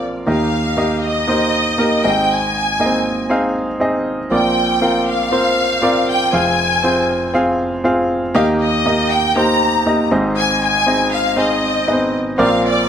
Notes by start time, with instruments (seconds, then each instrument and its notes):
Already playing: grand piano A#1 A#2 C4 F4 A#4 D5 F5
0.26 grand piano D#2 D#3 A#3 D#4 G4 D#5, violin section F5
0.77 grand piano A#3 D#4 G4 D#5
1.03 violin section D#5
1.27 grand piano A#3 D#4 G4 C5
1.78 grand piano A#3 D#4 G4 A#4
2.04 grand piano G#1 G#2 C4 D#4 G#4 D#5, violin section G5
2.31 violin section G#5
2.80 grand piano A#3 D#4 G#4 D#5
2.86 grand piano C4
3.30 grand piano C4 D#4 G#4 F5
3.80 grand piano C4 D#4 G#4 D#5
4.30 grand piano A#1 A#2 C4 F4 A#4 D5, violin section G5
4.81 grand piano C4 F4 A#4 F5
5.08 violin section F5
5.31 grand piano C4 F4 A#4 C5
5.82 grand piano C4 F4 A#4 D5
6.09 violin section G5
6.32 grand piano F1 F2 C4 F4 G#4 F5, violin section G#5
6.83 grand piano C4 F4 G#4 C5
7.34 grand piano C4 F4 G#4 F5
7.84 grand piano C4 F4 G#4 F5
8.35 grand piano D#2 D#3 A#3 D#4 G4 D#5, violin section F5
8.61 violin section D#5
8.86 grand piano A#3 D#4 G4 D#5
9.11 violin section G5
9.36 grand piano A#3 D#4 G4 C5, violin section A#5
9.86 grand piano A#3 D#4 G4 D#5
10.11 grand piano G#1 G#2 C4 D#4 G#4 D#5
10.38 violin section G#5
10.63 violin section G#5
10.87 grand piano C4 D#4 G#4 D#5
11.13 violin section F5
11.36 grand piano C4 D#4 G#4 C5, violin section D#5
11.87 grand piano B3 D#4 G#4 D#5
11.93 grand piano C4
12.38 grand piano A#1 A#2 C4 F4 A#4 D5, violin section F5
12.66 violin section D5